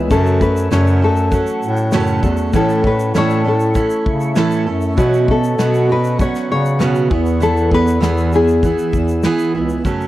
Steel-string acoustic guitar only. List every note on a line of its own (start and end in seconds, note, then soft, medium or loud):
0.00 0.11 B3 soft
0.00 0.11 E4 soft
0.00 0.10 G#4 medium
0.11 0.41 F#2 medium
0.11 0.42 C#3 medium
0.11 0.42 F#3 medium
0.11 0.41 A3 medium
0.11 0.41 C#4 medium
0.11 0.40 A4 medium
0.41 0.70 F#3 soft
0.41 0.71 A3 soft
0.41 0.71 C#4 medium
0.41 0.71 A4 soft
0.71 1.02 F#2 medium
0.71 1.02 C#3 medium
0.71 1.02 F#3 medium
0.71 1.02 A3 medium
0.71 1.02 C#4 medium
0.71 1.01 A4 medium
1.02 1.30 F#3 soft
1.02 1.31 A3 soft
1.02 1.32 C#4 soft
1.02 1.33 A4 medium
1.31 1.92 F#3 medium
1.31 1.93 A3 medium
1.31 1.94 C#4 medium
1.31 1.94 A4 medium
1.93 2.24 F#2 medium
1.93 2.24 C#3 medium
1.93 2.24 F#3 loud
1.93 2.23 A3 loud
1.93 2.23 C#4 loud
1.93 2.21 A4 loud
2.22 2.54 F#3 soft
2.22 2.53 A3 medium
2.22 2.53 C#4 medium
2.22 2.54 A4 medium
2.53 2.84 A2 medium
2.53 2.84 E3 medium
2.53 2.84 A3 medium
2.53 2.84 C#4 medium
2.53 2.83 E4 medium
2.53 2.82 A4 medium
2.83 3.14 A3 soft
2.83 3.14 C#4 soft
2.83 3.14 E4 soft
2.83 3.14 A4 soft
3.14 3.45 A2 medium
3.14 3.46 E3 medium
3.14 3.46 A3 medium
3.14 3.45 C#4 medium
3.14 3.44 E4 medium
3.14 3.43 A4 medium
3.44 3.73 A3 soft
3.44 3.74 C#4 soft
3.44 3.74 E4 medium
3.44 3.75 A4 medium
3.74 4.35 A3 medium
3.74 4.36 C#4 medium
3.74 4.36 E4 medium
3.74 4.36 A4 medium
4.35 4.67 A2 medium
4.35 4.67 E3 loud
4.35 4.67 A3 medium
4.35 4.67 C#4 medium
4.35 4.67 E4 loud
4.35 4.65 A4 loud
4.66 4.97 A3 soft
4.66 4.97 C#4 soft
4.66 4.98 E4 medium
4.66 4.97 A4 medium
4.97 5.28 B2 medium
4.97 5.28 F#3 medium
4.97 5.29 B3 medium
4.97 5.29 C#4 medium
4.97 5.27 F#4 medium
5.28 5.58 B3 soft
5.28 5.58 C#4 soft
5.28 5.59 F#4 medium
5.58 5.89 B2 medium
5.58 5.89 F#3 medium
5.58 5.89 B3 medium
5.58 5.89 C#4 medium
5.58 5.88 F#4 medium
5.89 6.18 B3 soft
5.89 6.19 C#4 soft
5.89 6.20 F#4 medium
6.19 6.78 F#3 medium
6.19 6.80 B3 medium
6.19 6.80 C#4 medium
6.19 6.80 F#4 medium
6.79 7.10 B2 medium
6.79 7.10 F#3 medium
6.79 7.11 B3 medium
6.79 7.11 C#4 medium
6.79 7.10 F#4 medium
7.10 7.40 B3 soft
7.10 7.41 E4 medium
7.10 7.41 G#4 medium
7.40 7.71 E3 medium
7.40 7.71 B3 medium
7.40 7.70 E4 medium
7.70 8.00 B3 soft
7.70 8.01 E4 soft
7.70 8.01 G#4 medium
8.00 8.32 E3 medium
8.00 8.32 B3 medium
8.00 8.32 E4 medium
8.00 8.31 G#4 medium
8.32 8.63 B3 soft
8.32 8.64 E4 soft
8.32 8.63 G#4 soft
8.63 9.23 E3 medium
8.63 9.24 B3 medium
8.63 9.24 E4 medium
8.63 9.25 G#4 medium
9.24 9.55 E3 loud
9.24 9.55 B3 medium
9.24 9.54 E4 loud
9.24 9.53 G#4 loud
9.55 9.85 B3 medium
9.55 9.85 E4 medium
9.55 9.85 G#4 medium
9.85 10.07 F#2 medium
9.85 10.07 C#3 medium
9.85 10.07 F#3 medium
9.85 10.07 A3 medium
9.85 10.07 C#4 medium
9.85 10.07 A4 medium